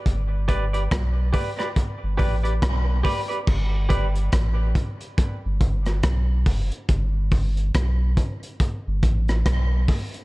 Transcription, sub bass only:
X:1
M:4/4
L:1/16
Q:"Swing 16ths" 1/4=70
K:G
V:1 name="Sub bass" clef=bass
G,,,4 B,,,2 z3 G,,, A,,,2 B,,,2 z2 | G,,,4 A,,,2 z3 G,,, G,,,2 B,,,2 F,,, z | G,,,4 B,,,2 z3 G,,, A,,,2 B,,,2 z2 |]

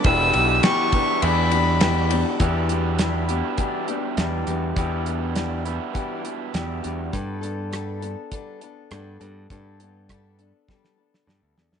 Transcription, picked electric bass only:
X:1
M:4/4
L:1/16
Q:1/4=102
K:Em
V:1 name="Picked electric bass" clef=bass
E,,,2 B,,,2 z4 E,,8 | E,,8 z4 E,,2 E,,2 | E,,8 z4 E,,2 E,,2 | G,,8 z4 G,,2 G,,2 |
G,,8 z4 G,, D,, E,, F,, |]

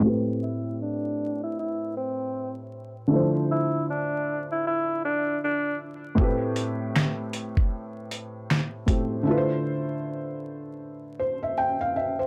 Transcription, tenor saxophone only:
X:1
M:4/4
L:1/16
Q:"Swing 16ths" 1/4=78
K:Am
V:1 name="Tenor saxophone"
z2 E2 D3 E E2 C3 z3 | z2 E2 D3 E E2 D2 D2 z2 | z16 | z16 |]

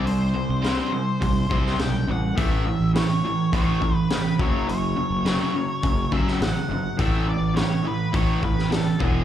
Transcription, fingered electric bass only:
X:1
M:4/4
L:1/16
Q:1/4=104
K:F#phr
V:1 name="Fingered electric bass" clef=bass
=C,,3 C,,2 z3 C,,2 C,,2 B,,,2 A,,,2 | A,,,3 A,,,2 z3 A,,,2 z4 F,,,2- | F,,,3 F,,,2 z3 F,,,2 z2 A,,, z G,,, z | A,,,3 A,,,2 z3 A,,,2 z4 E,,,2 |]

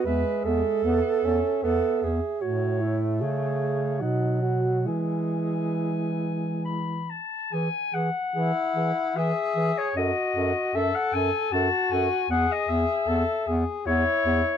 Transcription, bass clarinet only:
X:1
M:3/4
L:1/8
Q:1/4=76
K:E
V:1 name="Bass clarinet" clef=bass
E,, E,, E,, E,, E,, E,, | A,,2 C,2 B,,2 | E,4- E, z | E, E, E, E, E, E, |
F,, F,, F,, F,, F,, F,, | E,, E,, E,, E,, E,, E,, |]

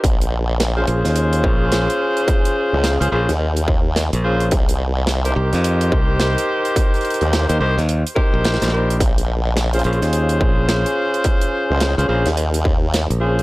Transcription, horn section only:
X:1
M:4/4
L:1/16
Q:"Swing 16ths" 1/4=107
K:Bbdor
V:1 name="Horn section"
z4 z [DFAc] [DFAc]8- [DFAc]2- | [DFAc]4- [DFAc] [DFAc] [DFAc] z6 z [DFAc]2 | z4 z [EGBc] [EGBc]8- [EGBc]2- | [EGBc]4- [EGBc] [EGBc] [EGBc] z3 [EGBc]4 [EGBc]2 |
z4 z [DFAc] [DFAc]8- [DFAc]2- | [DFAc]4- [DFAc] [DFAc] [DFAc] z6 z [DFAc]2 |]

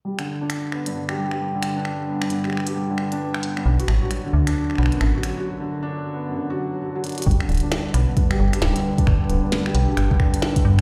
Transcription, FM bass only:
X:1
M:4/4
L:1/8
Q:"Swing 16ths" 1/4=133
K:G
V:1 name="FM bass" clef=bass
z8 | z8 | B,,, A,,, z D,, z B,,, A,,, z | z8 |
G,,, D,,, z B,,, z G,,, D,,, z | G,,, D,,, z B,,, G,,, z2 G,, |]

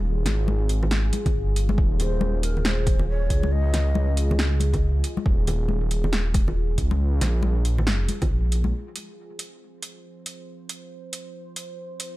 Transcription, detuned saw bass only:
X:1
M:4/4
L:1/8
Q:"Swing 16ths" 1/4=138
K:Fm
V:1 name="Detuned saw bass" clef=bass
E,,, A,,,4 z G,,,2 | E,,,4 E,,,3 D,,- | D,, D,,6 z | E,,,4 E,,,3 D,,- |
D,, B,,,4 z B,,,2 | z8 | z8 |]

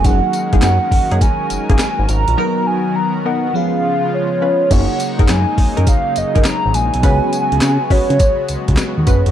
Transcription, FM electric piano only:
X:1
M:4/4
L:1/8
Q:"Swing 16ths" 1/4=103
K:F#
V:1 name="FM electric piano"
[F,A,DG]8 | [F,B,DA]4 [E,B,CG]4 | [A,DFGc]8 | [B,CFGc]8 |]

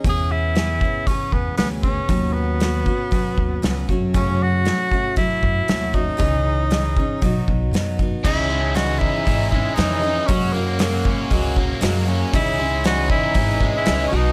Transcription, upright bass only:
X:1
M:4/4
L:1/8
Q:1/4=117
K:C#m
V:1 name="Upright bass" clef=bass
E,,4 z E,, =D,,2 | D,,4 z D,, C,, F,,- | F,,3 z2 F,, D,,2 | C,,4 B,,, B,,, F,,2 |
C,,4 G,,,2 =F,,2 | F,,4 C,,2 F,,2 | C,,4 G,,,2 C,, B,,, |]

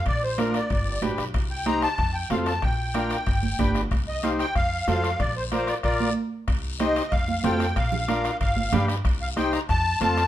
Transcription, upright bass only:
X:1
M:4/4
L:1/8
Q:1/4=187
K:Bb
V:1 name="Upright bass" clef=bass
B,,,4 G,,,2 A,,, =B,,, | C,,4 F,,2 F,,2 | B,,,4 G,,,2 G,,,2 | C,,4 F,,2 F,,2 |
B,,,4 B,,,2 z2 | C,,4 F,,2 F,,2 | B,,,4 G,,,2 G,,2 | C,,4 F,,2 F,,2 |]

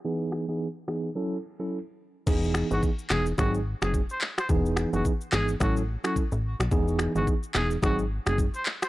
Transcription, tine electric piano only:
X:1
M:4/4
L:1/16
Q:"Swing 16ths" 1/4=108
K:E
V:1 name="Tine electric piano"
[E,B,DG]3 [E,B,DG] z2 [E,B,DG] z [F,CEA] z2 [F,CEA] z4 | [E,B,DG]3 [E,B,DG] z2 [E,B,DG] z [F,^B,DG] z2 [F,B,DG] z4 | [E,B,DG]3 [E,B,DG] z2 [E,B,DG] z [F,CEA] z2 [F,CEA] z4 | [E,B,DG]3 [E,B,DG] z2 [E,B,DG] z [F,^B,DG] z2 [F,B,DG] z4 |]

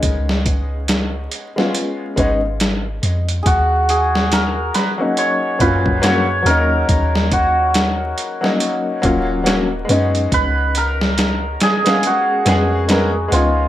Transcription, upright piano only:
X:1
M:4/4
L:1/16
Q:"Swing 16ths" 1/4=70
K:Ebm
V:1 name="Upright piano"
[A,CDE]6- [A,CDE] [A,CDF]3 [A,CDE] z4 z | z6 z [G,B,DE]3 [B,,G,DF]2 [G,B,DG] z [G,B,DE]2- | [G,B,DE]6- [G,B,DE] [G,B,DE]3 [G,B,DF]2 [G,B,DG] z [A,CDE]2- | [A,CDE]6- [A,CDE] [A,CDf]3 [A,CDA]2 [A,CDB] z [A,CDE]2 |]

